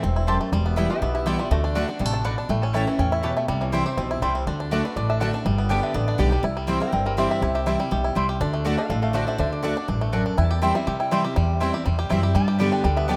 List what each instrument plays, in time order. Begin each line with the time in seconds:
Already playing: five-string banjo E3 E4, resonator guitar played with a steel bar E5
0.03 upright bass E1, steel-string acoustic guitar G2, five-string banjo C4
0.16 five-string banjo E4
0.27 steel-string acoustic guitar F#2, mandolin C4 E4 C5 A5, five-string banjo G4
0.41 five-string banjo A3
0.52 upright bass E1, steel-string acoustic guitar E2, five-string banjo G3
0.66 five-string banjo B3
0.76 steel-string acoustic guitar E3 G3 B3 E4, mandolin B3 E4 B4 G5, five-string banjo E4
0.89 five-string banjo E3, steel-string acoustic guitar B3 E4, resonator guitar played with a steel bar G4 E5
1.01 upright bass B1, steel-string acoustic guitar B2, five-string banjo B3, resonator guitar played with a steel bar G4 E5
1.14 five-string banjo E4, resonator guitar played with a steel bar G4 E5
1.26 steel-string acoustic guitar E3 G3 B3 E4, mandolin B3 E4 B4 G5, resonator guitar played with a steel bar F4 D5, five-string banjo G4
1.39 five-string banjo G3, steel-string acoustic guitar B3 E4, resonator guitar played with a steel bar F4 D5
1.50 upright bass D2, steel-string acoustic guitar D3, five-string banjo A3, resonator guitar played with a steel bar F#4 D5
1.64 five-string banjo D4, resonator guitar played with a steel bar D5
1.75 steel-string acoustic guitar D3 A3 D4 F#4, five-string banjo D3, mandolin A3 F#4 D5 F#5
1.88 five-string banjo D4, steel-string acoustic guitar D4 F#4
1.99 upright bass A1, steel-string acoustic guitar C3, five-string banjo G3
2.05 five-string banjo A3
2.13 five-string banjo D4, resonator guitar played with a steel bar A5
2.24 steel-string acoustic guitar B2, mandolin A3 F#4 D5 F#5, five-string banjo D4, resonator guitar played with a steel bar B5
2.38 five-string banjo D4, resonator guitar played with a steel bar A5
2.49 upright bass A1, steel-string acoustic guitar A2, five-string banjo A3, resonator guitar played with a steel bar G5
2.62 five-string banjo C#4, resonator guitar played with a steel bar A5
2.73 steel-string acoustic guitar E3 A3 C#4 E4, mandolin A3 E4 C#5 A5, five-string banjo E4, resonator guitar played with a steel bar G5
2.87 five-string banjo E3, steel-string acoustic guitar C#4 E4, resonator guitar played with a steel bar E5
2.99 upright bass E2, steel-string acoustic guitar A2, five-string banjo C#4, resonator guitar played with a steel bar G5
3.12 five-string banjo E4, resonator guitar played with a steel bar E5
3.23 steel-string acoustic guitar B2, mandolin A3 E4 C#5 A5, five-string banjo G4, resonator guitar played with a steel bar B4
3.37 five-string banjo A3, resonator guitar played with a steel bar E5
3.48 upright bass C2, steel-string acoustic guitar C3, five-string banjo G3, resonator guitar played with a steel bar D5
3.61 five-string banjo E3, resonator guitar played with a steel bar C#5
3.72 steel-string acoustic guitar E3 G3 C4 E4, mandolin C4 E4 C5 G5, five-string banjo E4, resonator guitar played with a steel bar C5
3.86 steel-string acoustic guitar C4 E4, five-string banjo G4, resonator guitar played with a steel bar C5
3.97 upright bass B1, steel-string acoustic guitar B2, five-string banjo C4
4.11 five-string banjo E4
4.22 upright bass C2, steel-string acoustic guitar C3, five-string banjo G3, mandolin C4 E4 C5 G5
4.35 five-string banjo C4
4.47 upright bass D2, steel-string acoustic guitar D3, five-string banjo D4
4.60 five-string banjo D4
4.71 steel-string acoustic guitar D3 A3 D4 F#4, mandolin A3 F#4 D5 F#5, five-string banjo A3
4.84 five-string banjo D4, steel-string acoustic guitar D4 F#4, resonator guitar played with a steel bar B4
4.96 upright bass A1, steel-string acoustic guitar A2, five-string banjo D4, resonator guitar played with a steel bar D5
5.09 five-string banjo D4, resonator guitar played with a steel bar E5
5.20 steel-string acoustic guitar D3 A3 D4 F#4, mandolin A3 F#4 D5 F#5, five-string banjo D4, resonator guitar played with a steel bar A5
5.33 five-string banjo D4, steel-string acoustic guitar D4 F#4
5.45 upright bass G1, steel-string acoustic guitar G2, five-string banjo G3
5.58 five-string banjo B3
5.69 steel-string acoustic guitar D3 G3 B3 G4, mandolin B3 G4 D5 G5, five-string banjo D4, resonator guitar played with a steel bar G5
5.83 five-string banjo D3, resonator guitar played with a steel bar E5
5.94 upright bass A1, steel-string acoustic guitar D3, five-string banjo B3, resonator guitar played with a steel bar D5
6.08 five-string banjo D4, resonator guitar played with a steel bar D5
6.18 upright bass B1, steel-string acoustic guitar D3 G3 B3 G4, mandolin B3 G4 D5 G5, five-string banjo G4
6.31 five-string banjo G3, steel-string acoustic guitar B3 G4
6.43 upright bass C2, steel-string acoustic guitar C3, five-string banjo E4
6.57 five-string banjo G3
6.67 steel-string acoustic guitar E3 G3 C4 E4, mandolin C4 E4 C5 G5, five-string banjo C4
6.80 steel-string acoustic guitar C4 E4, five-string banjo E4, resonator guitar played with a steel bar A#4 G5
6.92 upright bass G1, steel-string acoustic guitar G2, five-string banjo C4, resonator guitar played with a steel bar A#4 G5
7.05 five-string banjo G3, resonator guitar played with a steel bar A#4 G5
7.17 steel-string acoustic guitar E3 G3 C4 E4, mandolin C4 E4 C5 G5, resonator guitar played with a steel bar G4 E5, five-string banjo G4
7.30 five-string banjo C4, resonator guitar played with a steel bar G4 E5
7.42 upright bass C2, steel-string acoustic guitar C3, five-string banjo E4, resonator guitar played with a steel bar G4 E5
7.55 five-string banjo G4, resonator guitar played with a steel bar E5
7.66 steel-string acoustic guitar E3 G3 C4 E4, mandolin C4 E4 C5 G5, five-string banjo E4
7.79 five-string banjo G3, steel-string acoustic guitar C4 E4
7.91 upright bass B1, steel-string acoustic guitar B2, five-string banjo G4
8.04 five-string banjo E4
8.15 upright bass C2, steel-string acoustic guitar C3, five-string banjo G3, mandolin C4 E4 C5 G5
8.29 five-string banjo G4
8.41 upright bass D2, steel-string acoustic guitar D3, five-string banjo D4
8.54 five-string banjo A3
8.64 steel-string acoustic guitar D3 A3 D4 F#4, mandolin A3 F#4 D5 F#5, five-string banjo D4
8.77 five-string banjo D4, steel-string acoustic guitar D4 F#4, resonator guitar played with a steel bar A4 F5
8.89 upright bass A1, steel-string acoustic guitar A2, five-string banjo D4, resonator guitar played with a steel bar A4 F5
9.02 five-string banjo A3, resonator guitar played with a steel bar A4 F5
9.13 steel-string acoustic guitar D3 A3 D4 F#4, mandolin A3 F#4 D5 F#5, five-string banjo D4, resonator guitar played with a steel bar C5 E5
9.27 five-string banjo D4, steel-string acoustic guitar D4 F#4, resonator guitar played with a steel bar C5 E5
9.38 upright bass D2, steel-string acoustic guitar D3, five-string banjo D4, resonator guitar played with a steel bar C5 E5
9.52 resonator guitar played with a steel bar D5
9.63 steel-string acoustic guitar D3 A3 D4 F#4, mandolin A3 F#4 D5 F#5, five-string banjo D4
9.76 five-string banjo D4, steel-string acoustic guitar D4 F#4
9.88 upright bass A1, steel-string acoustic guitar G2, five-string banjo D4
10.01 five-string banjo A3
10.12 steel-string acoustic guitar F#2, mandolin A3 F#4 D5 F#5, five-string banjo D4
10.26 five-string banjo D4
10.37 upright bass E2, steel-string acoustic guitar E2, five-string banjo E4, resonator guitar played with a steel bar A5
10.51 five-string banjo G4
10.62 steel-string acoustic guitar E3 G3 C4 E4, mandolin C4 E4 C5 G5, five-string banjo E4, resonator guitar played with a steel bar G5
10.75 five-string banjo G3, steel-string acoustic guitar C4 E4, resonator guitar played with a steel bar E5
10.87 steel-string acoustic guitar C3, upright bass C3, five-string banjo G4
11.00 five-string banjo E4, resonator guitar played with a steel bar G5
11.11 steel-string acoustic guitar E3 G3 C4 E4, five-string banjo G3, mandolin C4 E4 C5 G5, resonator guitar played with a steel bar E5
11.24 steel-string acoustic guitar C4 E4, five-string banjo G4
11.36 steel-string acoustic guitar E2, upright bass E2, five-string banjo G3
11.60 steel-string acoustic guitar E3 G3 C4 E4, mandolin C4 E4 C5 G5, five-string banjo E4
11.73 steel-string acoustic guitar C4 E4, five-string banjo G4
11.86 upright bass E2, steel-string acoustic guitar C3, five-string banjo G3
11.99 five-string banjo G4
12.09 upright bass F#2, steel-string acoustic guitar E3 G3 C4 E4, mandolin C4 E4 C5 G5, five-string banjo E4
12.23 steel-string acoustic guitar C4 E4, five-string banjo G4
12.35 upright bass G2, steel-string acoustic guitar G2, five-string banjo G3, resonator guitar played with a steel bar A5
12.48 five-string banjo G4
12.59 steel-string acoustic guitar D3 G3 B3 G4, five-string banjo G3, mandolin B3 G4 D5 G5
12.72 five-string banjo D4, resonator guitar played with a steel bar G5
12.84 upright bass D2, steel-string acoustic guitar D3, five-string banjo G3, resonator guitar played with a steel bar G5
12.96 five-string banjo B3, resonator guitar played with a steel bar E5
13.08 steel-string acoustic guitar D3 G3 B3 G4, mandolin B3 G4 D5 G5, five-string banjo D4, resonator guitar played with a steel bar D5